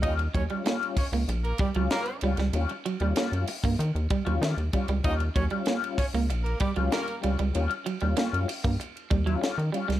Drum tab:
RD |bbbbbbbbbbbbbbbb|bbbbbbbbbbbbbbbb|bbbbbbbbbbbbbbbb|bbbbbbbbbbbbbbbb|
HH |------o-p-------|------o-p-------|------o-p-------|------o-p-------|
SD |----o-------o--o|----o-------o---|----o-------o---|----o-------o--o|
BD |o-o---o---o-----|-------o--o---o-|o-o---o---o-----|-------o--o-----|